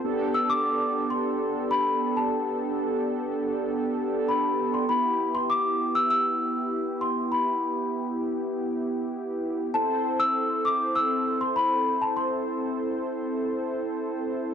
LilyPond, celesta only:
\new Staff \with { instrumentName = "Celesta" } { \time 4/4 \key e \phrygian \tempo 4 = 99 r8 e'''16 d'''4 c'''4 b''8. a''8~ | a''2. b''8. c'''16 | b''8. c'''16 d'''8. e'''16 e'''4. c'''8 | b''4. r2 r8 |
a''8. e'''8. d'''8 e'''8. c'''16 b''8. a''16 | c'''2. r4 | }